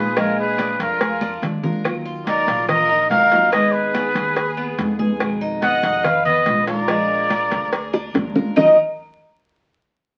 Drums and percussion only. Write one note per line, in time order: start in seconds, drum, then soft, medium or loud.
0.16 cowbell loud
0.16 high conga soft
0.16 claves medium
0.38 high conga soft
0.58 cowbell medium
0.58 high conga medium
0.58 claves medium
0.80 cowbell medium
0.80 high conga soft
1.01 cowbell loud
1.01 high conga medium
1.21 high conga loud
1.21 claves medium
1.42 cowbell medium
1.42 low conga medium
1.63 low conga loud
1.85 cowbell loud
1.85 high conga soft
1.85 claves medium
2.06 high conga soft
2.27 cowbell medium
2.27 high conga medium
2.48 cowbell medium
2.48 high conga soft
2.69 cowbell loud
2.69 high conga soft
2.69 low conga loud
2.69 claves medium
2.90 high conga soft
3.10 cowbell medium
3.10 high conga medium
3.32 cowbell medium
3.52 cowbell loud
3.52 high conga soft
3.52 claves medium
3.74 high conga soft
3.95 cowbell medium
3.95 high conga medium
3.95 claves medium
4.16 cowbell medium
4.16 high conga soft
4.37 cowbell loud
4.37 high conga soft
4.57 high conga soft
4.57 claves medium
4.78 cowbell medium
4.78 high conga medium
4.99 high conga medium
5.20 cowbell loud
5.20 high conga soft
5.20 claves medium
5.41 high conga soft
5.62 cowbell medium
5.62 high conga loud
5.83 cowbell medium
5.83 high conga soft
6.04 cowbell loud
6.04 high conga soft
6.04 low conga medium
6.04 claves medium
6.25 high conga soft
6.25 low conga medium
6.46 cowbell medium
6.46 high conga medium
6.67 cowbell medium
6.88 cowbell loud
6.88 claves medium
7.10 high conga soft
7.30 cowbell medium
7.30 high conga medium
7.30 claves medium
7.51 cowbell medium
7.51 high conga soft
7.73 cowbell loud
7.73 high conga soft
7.93 high bongo medium
7.93 high conga soft
7.93 claves medium
8.14 cowbell medium
8.14 low bongo medium
8.14 high conga medium
8.35 low bongo medium
8.35 high conga medium
8.56 low bongo loud
8.56 low conga loud
8.56 claves loud